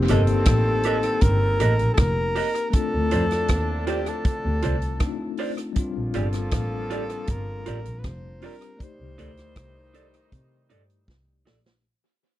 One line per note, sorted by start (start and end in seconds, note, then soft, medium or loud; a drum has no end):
0.00 2.32 G2 medium
0.00 2.32 D#3 medium
0.00 2.68 A#3 medium
0.00 2.32 C4 medium
0.00 2.69 C4 medium
0.00 2.70 D#4 medium
0.00 2.71 G4 medium
0.08 0.45 G1 medium
0.08 0.21 G4 medium
0.08 1.23 A4 loud
0.08 0.21 A#4 medium
0.08 0.21 D#5 medium
0.08 closed hi-hat medium
0.27 closed hi-hat medium
0.45 1.01 A1 medium
0.45 kick loud
0.45 cross-stick loud
0.45 closed hi-hat medium
0.83 0.96 G4 medium
0.83 0.97 A#4 medium
0.83 0.97 D#5 medium
0.83 closed hi-hat medium
1.03 closed hi-hat medium
1.21 1.41 G1 loud
1.21 1.91 A#4 loud
1.21 kick loud
1.21 closed hi-hat medium
1.60 1.79 A1 loud
1.60 1.72 G4 medium
1.60 1.72 A#4 medium
1.60 1.72 D#5 loud
1.60 closed hi-hat medium
1.79 1.97 A#1 medium
1.79 closed hi-hat soft
1.94 2.01 A4 medium
1.94 cross-stick loud
1.94 closed hi-hat medium
1.98 2.34 F1 medium
1.98 2.70 A#4 loud
1.98 kick loud
2.35 2.47 G4 medium
2.35 2.48 A#4 medium
2.35 2.48 D#5 medium
2.35 open hi-hat medium
2.55 closed hi-hat medium
2.70 4.95 A3 medium
2.70 4.96 C4 medium
2.70 4.97 D4 medium
2.70 2.76 A#4 medium
2.70 kick medium
2.70 closed hi-hat medium
2.74 5.35 A2 medium
2.74 5.35 D3 medium
2.74 5.35 F3 medium
2.74 5.35 D4 medium
2.74 4.98 F4 medium
2.74 3.86 A4 loud
2.94 3.11 D2 medium
3.11 3.48 F2 medium
3.11 3.23 F4 medium
3.11 3.23 C5 medium
3.11 3.24 D5 medium
3.11 closed hi-hat medium
3.31 cross-stick medium
3.31 closed hi-hat soft
3.48 4.04 D#2 loud
3.48 kick loud
3.48 cross-stick loud
3.48 closed hi-hat medium
3.87 3.99 F4 medium
3.87 4.10 G4 medium
3.87 3.99 C5 medium
3.87 3.99 D5 medium
3.87 closed hi-hat medium
4.06 5.39 A4 medium
4.06 closed hi-hat medium
4.25 kick loud
4.25 closed hi-hat medium
4.45 4.62 D2 medium
4.62 4.99 C2 medium
4.62 4.75 F4 medium
4.62 4.75 C5 medium
4.62 4.75 D5 medium
4.62 closed hi-hat medium
4.82 closed hi-hat soft
4.99 5.76 A3 medium
4.99 5.74 C4 medium
4.99 5.76 D4 medium
4.99 5.08 D#4 medium
4.99 kick loud
4.99 cross-stick loud
4.99 closed hi-hat medium
5.09 5.78 F4 medium
5.37 5.51 F4 medium
5.37 5.51 C5 medium
5.37 5.51 D5 medium
5.37 open hi-hat medium
5.58 closed hi-hat medium
5.73 8.38 D3 medium
5.73 8.36 G3 medium
5.73 8.38 A#3 medium
5.73 8.37 C4 medium
5.73 8.38 D4 medium
5.73 kick medium
5.73 closed hi-hat medium
5.77 8.38 F3 medium
5.77 8.38 F4 medium
5.77 8.39 F4 medium
5.97 6.15 A#1 medium
6.14 6.51 G1 loud
6.14 6.26 F4 medium
6.14 6.26 G4 medium
6.14 7.33 A4 medium
6.14 6.27 D5 medium
6.14 closed hi-hat medium
6.33 cross-stick medium
6.33 closed hi-hat medium
6.51 7.07 A1 medium
6.51 kick loud
6.51 cross-stick loud
6.51 closed hi-hat loud
6.90 7.02 F4 medium
6.90 7.03 G4 medium
6.90 7.03 D5 medium
6.90 closed hi-hat medium
7.10 closed hi-hat medium
7.27 7.47 G1 medium
7.27 8.01 A#4 loud
7.27 kick loud
7.27 closed hi-hat medium
7.66 7.85 A1 medium
7.66 7.78 F4 medium
7.66 7.78 G4 medium
7.66 7.79 D5 medium
7.66 closed hi-hat medium
7.85 8.04 A#1 medium
7.85 closed hi-hat medium
7.99 8.09 B4 medium
8.04 8.41 F1 loud
8.04 8.44 C5 medium
8.04 kick loud
8.04 cross-stick loud
8.04 closed hi-hat medium
8.40 8.79 G3 soft
8.40 8.80 C4 soft
8.40 8.80 D4 soft
8.40 8.54 F4 medium
8.40 8.81 G4 soft
8.40 8.55 G4 medium
8.40 8.55 D5 medium
8.40 open hi-hat medium
8.45 8.85 A#4 medium
8.62 closed hi-hat medium
8.77 11.78 A3 medium
8.77 11.80 D#4 medium
8.77 11.79 D5 medium
8.77 kick medium
8.77 closed hi-hat medium
8.82 11.43 A2 medium
8.82 11.43 D#3 medium
8.82 11.43 G3 medium
8.82 11.43 D#4 medium
8.82 11.81 G4 medium
8.82 11.09 C5 loud
9.00 9.17 C2 medium
9.18 9.54 D2 medium
9.18 9.30 D#4 medium
9.18 9.30 A4 medium
9.18 9.31 D5 medium
9.18 closed hi-hat medium
9.37 cross-stick medium
9.37 closed hi-hat soft
9.56 10.11 C2 medium
9.56 kick loud
9.56 cross-stick loud
9.56 closed hi-hat medium
9.94 10.06 D#4 medium
9.94 10.06 A4 medium
9.94 10.06 D5 medium
9.94 closed hi-hat medium
10.14 closed hi-hat medium
10.32 10.68 C3 loud
10.32 kick loud
10.32 closed hi-hat medium
10.70 11.07 G2 medium
10.70 10.82 D#4 medium
10.70 10.82 A4 medium
10.70 10.82 D5 medium
10.70 closed hi-hat medium
10.90 closed hi-hat soft
11.08 11.44 C2 medium
11.08 kick loud
11.08 snare medium
11.45 11.82 A#1 medium
11.45 11.57 D#4 medium
11.45 11.58 A4 medium
11.45 11.58 D5 medium
11.45 snare medium
11.66 snare medium